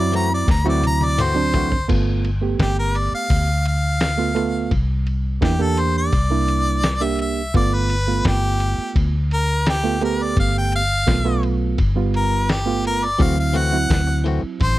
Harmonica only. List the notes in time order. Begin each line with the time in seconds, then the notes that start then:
Already playing: D5
0.16 A#5
0.34 D5
0.51 A#5
0.69 D5
0.87 A#5
1.05 D5
1.22 C5
2.62 G4
2.79 A#4
2.98 D5
3.14 F5
3.68 F5
5.44 G4
5.62 A4
5.80 C5
5.98 D5
7.03 E5
7.21 E5
7.57 D5
7.74 B4
8.28 G4
9.34 A#4
9.69 G4
10.04 A#4
10.23 D5
10.40 F5
10.58 G5
10.76 F5
12.17 A#4
12.51 G4
12.87 A#4
13.05 D5
13.23 F5
13.40 F5
13.57 F#5
14.62 C5